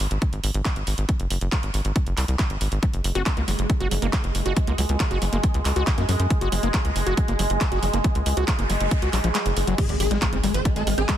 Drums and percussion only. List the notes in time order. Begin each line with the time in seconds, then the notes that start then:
0.00 open hi-hat
0.11 closed hi-hat
0.22 kick, closed hi-hat
0.33 closed hi-hat
0.44 open hi-hat
0.54 closed hi-hat
0.65 kick, clap, closed hi-hat
0.76 closed hi-hat
0.87 open hi-hat
0.98 closed hi-hat
1.09 kick, closed hi-hat
1.20 closed hi-hat
1.30 open hi-hat
1.41 closed hi-hat
1.52 kick, clap, closed hi-hat
1.63 closed hi-hat
1.74 open hi-hat
1.85 closed hi-hat
1.96 kick, closed hi-hat
2.07 closed hi-hat
2.17 clap, open hi-hat
2.28 closed hi-hat
2.39 kick, clap, closed hi-hat
2.50 closed hi-hat
2.61 open hi-hat
2.72 closed hi-hat
2.83 kick, closed hi-hat
2.94 closed hi-hat
3.04 open hi-hat
3.15 closed hi-hat
3.26 kick, clap, closed hi-hat
3.37 closed hi-hat
3.48 open hi-hat
3.59 closed hi-hat
3.70 kick, closed hi-hat
3.81 closed hi-hat
3.91 open hi-hat
4.02 closed hi-hat
4.13 kick, clap, closed hi-hat
4.24 closed hi-hat
4.35 open hi-hat
4.46 closed hi-hat
4.57 kick, closed hi-hat
4.67 closed hi-hat
4.78 open hi-hat
4.89 closed hi-hat
5.00 kick, clap, closed hi-hat
5.11 closed hi-hat
5.22 open hi-hat
5.33 closed hi-hat
5.43 kick, closed hi-hat
5.54 closed hi-hat
5.65 clap, open hi-hat
5.76 closed hi-hat
5.87 kick, clap, closed hi-hat
5.98 closed hi-hat
6.09 open hi-hat
6.20 closed hi-hat
6.30 kick, closed hi-hat
6.41 closed hi-hat
6.52 open hi-hat
6.63 closed hi-hat
6.74 kick, clap, closed hi-hat
6.85 closed hi-hat
6.96 open hi-hat
7.07 closed hi-hat
7.17 kick, closed hi-hat
7.28 closed hi-hat
7.39 open hi-hat
7.50 closed hi-hat
7.61 kick, clap, closed hi-hat
7.72 closed hi-hat
7.83 open hi-hat
7.94 closed hi-hat
8.04 kick, closed hi-hat
8.15 closed hi-hat
8.26 open hi-hat
8.37 closed hi-hat
8.48 kick, clap, closed hi-hat
8.59 closed hi-hat
8.70 open hi-hat
8.80 closed hi-hat
8.91 kick, closed hi-hat
9.02 closed hi-hat
9.13 clap, open hi-hat
9.24 closed hi-hat
9.35 clap, closed hi-hat
9.46 closed hi-hat
9.57 open hi-hat
9.67 closed hi-hat
9.78 kick, closed hi-hat, crash
9.89 closed hi-hat
10.00 open hi-hat
10.11 closed hi-hat
10.22 kick, clap, closed hi-hat
10.33 closed hi-hat
10.44 open hi-hat
10.54 closed hi-hat
10.65 kick, closed hi-hat
10.76 closed hi-hat
10.87 open hi-hat
10.98 closed hi-hat
11.09 kick, clap, closed hi-hat